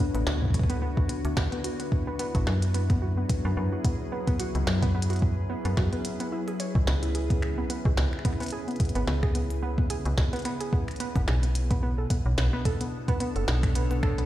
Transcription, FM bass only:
0.15 A1
0.27 D2
1.25 D2
1.37 D2
2.35 A1
2.47 F#2
3.45 F#2
3.57 F#2
4.55 C#2
4.67 F#2
5.65 F#2
5.77 F#2
6.75 C#2
6.87 C#2
7.85 C#2
7.97 C#2
8.95 G#1
9.08 C#2
10.06 C#2
10.18 C#2
11.16 G#1
11.28 B1
12.26 B1
12.38 B1
13.36 F#1
13.48 B1

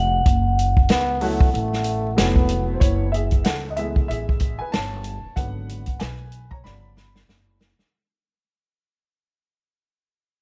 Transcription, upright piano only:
1.21 F#3 A3 B3 E4 F#4
2.16 F#3 A3 B3 E4 F#4
2.74 C5
2.80 E4 C#5
3.12 G#4 E5
3.44 A4 F#5
3.70 D#5
3.76 E3 G#3 A3 B3 G#4 E5
4.08 G#4 E5
4.59 B4 G#5
4.72 C#5 A5
5.36 D3 F#3 B3 B4 F#5
6.00 B4 G#5
6.51 C#5 A#5
6.64 C#3 F3 B3 D5 B5

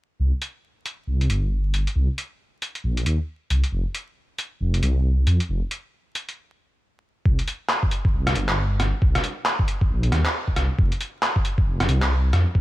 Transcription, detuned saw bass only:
0.20 C2
1.08 C2
1.30 G1
1.74 G1
1.96 C2
2.84 A#1
3.06 D#2
3.50 C2
3.72 F1
4.61 F1
4.83 C2
5.27 F2
5.49 F1
7.25 C2
8.14 C2
8.36 G1
8.80 G1
9.02 C2
9.90 A#1
10.12 D#2
10.56 C2
10.78 F1
11.67 F1
11.89 C2
12.33 F2
12.55 F1

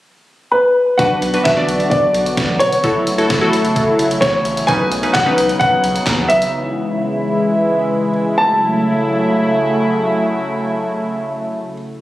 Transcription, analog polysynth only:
0.99 D4 F#4 B4
1.34 D4 F#4 B4
1.57 D4 F#4 D5
2.84 E4 F#4 A4
3.18 E4 F#4 A4
3.41 E4 F#4 A4
4.68 C#4 D#4 B4
5.03 C#4 D#4 B4
5.26 C#4 D#4 B4

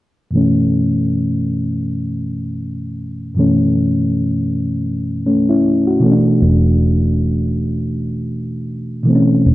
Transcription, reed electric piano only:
0.31 F#2 B2 E3
0.35 A3 C#4
3.35 F#2 B2 E3
3.39 A3 C#4
5.26 A3 C#4
5.49 C#4 E4
5.87 F#4
6.00 B2 E3 A3
6.05 C#4
6.12 D4
9.03 B2 E3 A3
9.09 C4
9.15 C#4

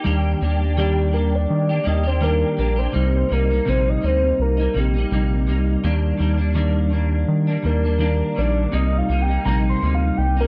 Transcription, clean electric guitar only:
0.04 D#3 G3 A#3 D4 G4
0.41 G3 A#3 D4 G4
0.60 A#3 D4 G4
0.77 D#3 G3 A#3 D4 G4
1.11 G3 A#3 D4
1.16 G4
1.69 A#3 D4 G4
1.84 G3 A#3 D4 G4
2.03 D4 G4
2.07 A#3
2.21 D#3 G3 A#3 D4 G4
2.57 G3 A#3 D4 G4
2.76 A#3 D4 G4
2.92 C3 G3 A#3 D#4
3.29 C3 G3 A#3 D#4
3.50 G3 A#3 D#4
3.65 C3 G3 A#3 D#4
4.01 C3 G3 A#3 D#4
4.57 G3 A#3 D#4
4.74 C3 G3 A#3 D#4
4.94 A#3 D#4
4.98 G3
5.11 C3 G3 A#3 D#4
5.47 C3 G3 A#3 D#4
5.84 D#3 G3 A#3 D4
6.18 D#3 G3 A#3 D4
6.37 G3 A#3 D4
6.54 D#3 G3 A#3 D4
6.90 D#3 G3 A#3 D4
7.47 G3 A#3 D4
7.63 D#3 G3 A#3
7.67 D4
7.83 G3 A#3 D4
7.98 D#3 G3 A#3 D4
8.35 D#3 G3 A#3 D4
8.72 C3 G3 A#3 D#4
9.09 C3 G3 A#3 D#4
9.28 G3 A#3 D#4
9.45 C3 G3 A#3 D#4
9.81 C3 G3 A#3
9.85 D#4
10.37 G3 A#3 D#4

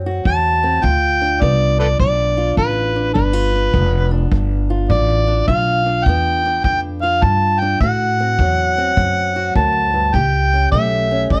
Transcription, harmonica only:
0.27 A5
0.84 G5
1.41 D5
1.79 A4 B4 D5
2.00 D5
2.58 B4
3.14 B4
4.90 D5
5.48 F5
6.05 G5
6.64 G5
7.02 F5
7.23 A5
7.59 G5
7.81 F#5
9.56 A5
10.14 G5
10.72 E5
11.32 E5

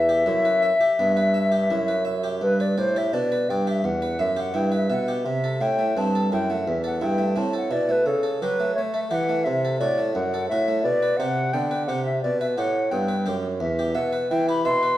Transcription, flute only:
Already playing: E5
2.43 B4
2.61 D5
2.78 C5
2.98 E5
3.13 D5
3.49 G5
3.68 E5
3.85 F#5
4.20 E5
4.40 F#5
4.56 G5
4.75 E5
4.92 F#5
5.26 E5
5.61 G5
5.98 A5
6.33 G5
6.51 F#5
6.67 E5
6.86 F#5
7.03 G5
7.37 A5
7.57 F#5
7.72 D5
7.91 B4
8.06 A4
8.41 B4
8.75 C#5
8.94 E5
9.11 F#5
9.44 E5
9.79 D5
10.14 F#5
10.49 E5
10.83 D5
11.17 F#5
11.53 G5
11.86 F#5
12.06 E5
12.22 D5
12.40 E5
12.57 F#5
12.91 G5
13.60 E5
13.95 F#5
14.30 G5
14.49 B5
14.66 C6

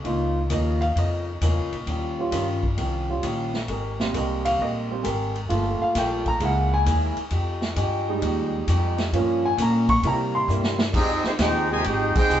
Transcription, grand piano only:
0.04 A#3 D#4 F4
0.53 D#5
0.81 F5
0.99 D#5
2.19 G3 C#4 F4
3.10 G3 C#4 F4
4.00 G3 A#3 C4
4.18 D#5
4.45 F5
4.62 D#5
4.90 G3 A#3 C4
5.49 A3 A#3 F4
5.82 F5
5.98 G5
6.28 A#5
6.41 G#3 A#3 E4 F#5
6.74 G#5
8.09 G3 G#3 D#4
9.13 F3 A#3 C#4
9.46 G#5
9.62 A#5
9.89 C#6
10.04 G3 A#3 E4 A#5
10.35 C6

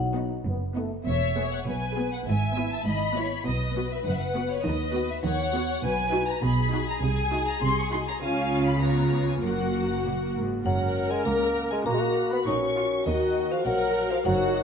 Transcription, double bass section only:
Already playing: B1
0.45 F#1
1.06 E1
1.66 B1
2.27 G#1
2.86 G#1
3.46 B1
4.06 F#1
4.66 D#2
5.25 D#2
5.85 B1
6.43 B1
7.03 C2
7.63 C2
8.22 C#2
9.44 F#1
10.65 F#1
11.26 C#2
11.86 A#1
12.46 A#1
13.07 D#2
13.67 A#1
14.26 F#1

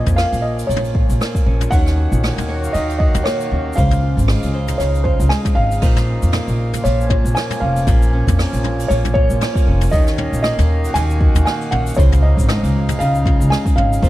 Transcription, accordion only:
Already playing: A#2 F3 C#4
1.72 D#3
1.86 A#3
2.50 F#4
2.65 F5
3.77 C#3
4.35 G#3
4.66 D#4
5.82 A#2
6.80 F3
7.01 C#4
9.93 D#3
10.16 A#3 F5
10.86 F#4
11.97 C#3
12.19 D#4
12.35 G#3
14.03 A#2

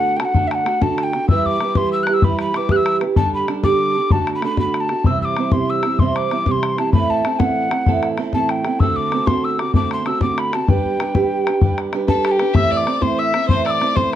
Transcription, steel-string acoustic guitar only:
Already playing: D3 A3 D4 F#4 A4
0.18 D4 F#4 A4
0.33 D3 A3 D4 F#4 A4
0.65 A3 D4 F#4 A4
0.81 D3 A3 D4 F#4 A4
1.14 D4 F#4 A4
1.30 E3 G3 E4 G4 B4
1.60 G3 E4 G4 B4
1.75 E3 G3 E4 G4 B4
2.07 E4 G4 B4
2.23 E3 G3 E4 G4 B4
2.54 G3 E4 G4 B4
2.70 E3 G3 E4 G4 B4
3.01 E4 G4 B4
3.17 D3 G3 D4 G4 A4
3.48 G3 D4 G4 A4
3.64 D3 G3 D4 G4 A4
3.96 D4 G4 A4
4.11 D3 A3 D4 F#4 A4
4.42 A3 D4 F#4 A4
4.57 D3 A3 D4 F#4 A4
4.89 D4 F#4 A4
5.05 C3 E3 G3 C4 E4 C5
5.37 G3 C4 E4 C5
5.53 C3 E3 G3 C4 E4 C5
5.83 G3 C4 E4 C5
6.00 C3 E3 G3 C4 E4 C5
6.31 G3 C4 E4 C5
6.46 C3 E3 G3 C4 E4 C5
6.77 G3 C4 E4 C5
6.93 A2 E3 A3 C4 E4 A4
7.26 C4 E4 A4
7.40 A2 E3 A3 C4 E4 A4
7.71 A3 C4 E4 A4
7.86 A2 E3 A3 C4 E4 A4
8.17 A3 C4 E4 A4
8.34 A2 E3 A3 C4 E4 A4
8.65 A3 C4 E4 A4
8.80 D3 A3 C4 F#4 A4
9.12 A3 C4 F#4 A4
9.28 D3 A3 C4 F#4 A4
9.59 C4 F#4 A4
9.74 D3 A3 C4 F#4 A4
10.04 A3 C4 F#4 A4
10.21 D3 A3 C4 F#4 A4
10.53 C4 F#4 A4
10.67 G3 D4 G4 B4
10.99 G3 D4 G4 B4
11.15 G3 D4 G4 B4
11.46 D4 G4 B4
11.61 G3 D4 G4 B4
11.93 G3 D4 G4 B4
12.07 G3 D4 G4 B4
12.39 D4 G4 B4
12.54 A2 E3 A3 C4 E4 C5
12.86 A3 C4 E4 C5
13.01 A2 E3 A3 C4 E4 C5
13.34 A3 C4 C5
13.49 A2 E3 A3 C4 E4 C5
13.81 A3 C4 E4 C5
13.96 A2 E3 A3 C4 E4 C5

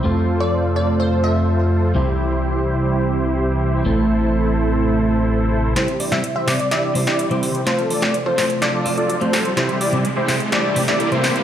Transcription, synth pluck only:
0.40 D5
0.76 D5
1.00 C5
1.24 E5
6.12 E5
6.36 E5
6.48 D5
6.59 D5
6.71 E5
8.02 D5
8.26 C5
8.38 C5

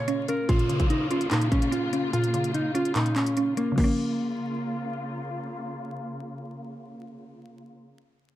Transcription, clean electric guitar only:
Already playing: C#5
0.29 A#4
0.49 F4
0.90 D#4
1.11 F4
1.31 D#4
1.52 C#4
1.72 F4
2.13 F4
2.55 D#4
2.75 F4
2.96 D#4
3.16 C#4
3.57 A#3
3.78 A#3

